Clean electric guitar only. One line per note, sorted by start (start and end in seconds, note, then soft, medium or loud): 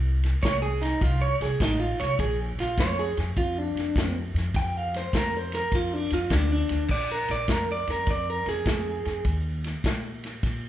0.43 0.62 C#5 medium
0.62 0.81 G#4 medium
0.82 1.02 D#4 medium
1.02 1.21 F4 medium
1.22 1.40 C#5 medium
1.42 1.60 G#4 medium
1.62 1.80 D#4 medium
1.80 1.99 F4 medium
2.00 2.19 C#5 medium
2.20 2.38 G#4 medium
2.60 2.78 F4 medium
2.80 2.98 C#5 medium
2.99 3.17 G#4 loud
3.38 3.58 F4 medium
3.58 4.14 D4 loud
4.56 4.77 G5 medium
4.77 4.95 F5 medium
4.97 5.14 C5 medium
5.17 5.37 A#4 medium
5.37 5.54 C5 medium
5.55 5.73 A#4 medium
5.75 5.94 F4 medium
5.94 6.12 D4 medium
6.13 6.31 F4 medium
6.33 6.51 D4 medium
6.52 6.83 D4 medium
6.91 7.09 D5 medium
7.12 7.29 A#4 medium
7.31 7.49 D5 medium
7.51 7.69 A#4 medium
7.72 7.89 D5 medium
7.90 8.08 A#4 medium
8.11 8.28 D5 medium
8.30 8.48 A#4 medium
8.49 9.24 G#4 medium